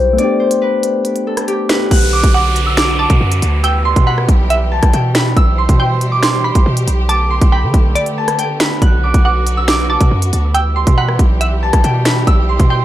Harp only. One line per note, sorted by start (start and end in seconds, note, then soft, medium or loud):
0.00 0.38 G4 medium
0.00 0.39 C5 medium
0.00 0.18 D5 medium
0.00 0.18 E5 loud
0.18 2.03 D5 loud
0.40 0.68 C5 medium
0.62 1.69 B4 medium
1.27 3.47 A4 medium
1.48 1.97 G4 medium
1.69 3.74 B4 medium
1.91 2.97 F#6 loud
2.13 2.34 D6 medium
2.34 2.77 D6 medium
2.66 3.63 E6 medium
2.77 2.99 D6 medium
2.99 4.21 D6 medium
3.63 4.77 E6 loud
3.85 4.12 C6 medium
4.06 5.15 B5 medium
4.72 6.17 A5 medium
4.94 6.49 G5 medium
5.15 5.64 B5 medium
5.37 6.50 E6 loud
5.58 5.79 C6 medium
5.79 6.23 C6 medium
6.12 7.09 D6 medium
6.23 6.44 C6 medium
6.44 7.30 C6 medium
7.09 8.31 D6 loud
7.31 7.58 C6 medium
7.52 8.60 B5 medium
8.18 9.63 A5 medium
8.39 8.88 G5 loud
8.61 9.96 B5 medium
8.82 9.88 F#6 loud
9.04 9.25 D6 medium
9.25 9.67 D6 medium
9.57 10.54 E6 medium
9.68 9.90 D6 medium
9.90 11.12 D6 medium
10.54 11.68 E6 loud
10.76 11.03 C6 medium
10.97 12.06 B5 medium
11.63 12.85 A5 medium
11.84 12.85 G5 medium
12.06 12.55 B5 medium
12.27 12.85 E6 loud
12.49 12.70 C6 medium
12.70 12.85 C6 medium